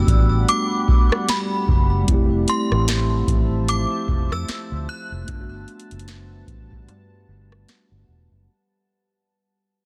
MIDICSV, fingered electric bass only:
0, 0, Header, 1, 3, 480
1, 0, Start_track
1, 0, Key_signature, 1, "major"
1, 0, Tempo, 800000
1, 1248, Time_signature, 4, 2, 24, 8
1, 5910, End_track
2, 0, Start_track
2, 0, Title_t, "Fingered electric bass"
2, 0, Program_c, 0, 33
2, 45, Note_on_c, 0, 33, 96
2, 260, Note_off_c, 0, 33, 0
2, 1010, Note_on_c, 0, 30, 94
2, 1223, Note_off_c, 0, 30, 0
2, 1251, Note_on_c, 0, 29, 106
2, 1463, Note_off_c, 0, 29, 0
2, 1629, Note_on_c, 0, 33, 92
2, 1932, Note_off_c, 0, 33, 0
2, 1965, Note_on_c, 0, 33, 97
2, 2304, Note_off_c, 0, 33, 0
2, 2450, Note_on_c, 0, 29, 90
2, 2573, Note_off_c, 0, 29, 0
2, 2590, Note_on_c, 0, 41, 101
2, 2678, Note_off_c, 0, 41, 0
2, 2830, Note_on_c, 0, 38, 93
2, 2918, Note_off_c, 0, 38, 0
2, 3070, Note_on_c, 0, 29, 102
2, 3159, Note_off_c, 0, 29, 0
2, 3170, Note_on_c, 0, 31, 99
2, 3383, Note_off_c, 0, 31, 0
2, 3550, Note_on_c, 0, 30, 89
2, 3852, Note_off_c, 0, 30, 0
2, 3884, Note_on_c, 0, 33, 94
2, 4130, Note_off_c, 0, 33, 0
2, 4130, Note_on_c, 0, 43, 103
2, 4343, Note_off_c, 0, 43, 0
2, 4370, Note_on_c, 0, 31, 100
2, 4583, Note_off_c, 0, 31, 0
2, 4748, Note_on_c, 0, 31, 90
2, 4838, Note_off_c, 0, 31, 0
2, 4849, Note_on_c, 0, 28, 89
2, 4973, Note_off_c, 0, 28, 0
2, 4988, Note_on_c, 0, 30, 87
2, 5077, Note_off_c, 0, 30, 0
2, 5910, End_track
3, 0, Start_track
3, 0, Title_t, "Muted fingered electric bass strokes"
3, 2690, Note_on_c, 9, 29, 45
3, 2750, Note_off_c, 9, 29, 0
3, 5910, End_track
0, 0, End_of_file